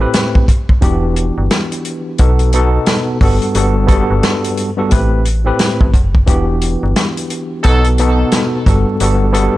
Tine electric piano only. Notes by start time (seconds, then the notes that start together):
0.00 A2 A3 C4 G4 B4
0.81 E3 B3 D4 F#4 G4
2.19 B2 B3 D#4 F#4 A4
2.53 B2 B3 D#4 F#4 A4
3.21 G2 G3 B3 F#4 A4
3.55 G2 G3 B3 F#4 A4
3.86 G2 G3 B3 F#4 A4
4.77 G2 G3 B3 F#4 A4
4.91 A2 A3 C4 G4 B4
5.45 A2 A3 C4 G4 B4
6.26 E3 B3 D4 F#4 G4
7.64 B2 B3 D#4 F#4 A4
7.99 B2 B3 D#4 F#4 A4
8.67 G2 G3 B3 F#4 A4
9.01 G2 G3 B3 F#4 A4
9.32 G2 G3 B3 F#4 A4